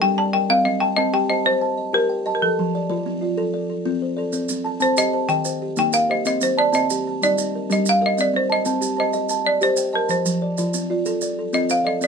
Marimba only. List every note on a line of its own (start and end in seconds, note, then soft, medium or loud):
0.02 0.16 G5 loud
0.18 0.34 A5 loud
0.33 0.48 G5 loud
0.50 0.66 F5 loud
0.65 0.82 D#5 medium
0.80 0.96 G5 medium
0.97 1.13 D#5 loud
1.14 1.30 G5 loud
1.30 1.46 D#5 medium
1.46 1.90 C5 loud
1.94 2.34 A#4 loud
2.35 2.42 A#4 medium
2.42 3.02 A4 medium
4.82 4.97 C5 loud
4.98 5.31 D#5 loud
5.29 5.59 G5 loud
5.79 5.95 G5 loud
5.94 6.01 F5 loud
6.11 6.26 D#5 medium
6.27 6.43 D#5 loud
6.43 6.59 C5 medium
6.59 6.66 D5 loud
6.75 7.24 D#5 loud
7.23 7.72 D5 loud
7.72 7.87 D#5 loud
7.89 8.04 F5 loud
8.06 8.20 D#5 medium
8.21 8.35 D5 medium
8.36 8.43 C5 medium
8.52 8.99 D#5 medium
9.00 9.43 D#5 medium
9.47 9.62 D5 loud
9.63 9.95 C5 loud
9.95 10.09 A#4 medium
10.11 11.66 C5 medium
11.54 11.70 D#5 loud
11.71 11.85 F5 loud
11.87 12.02 D#5 medium
12.04 12.07 D5 medium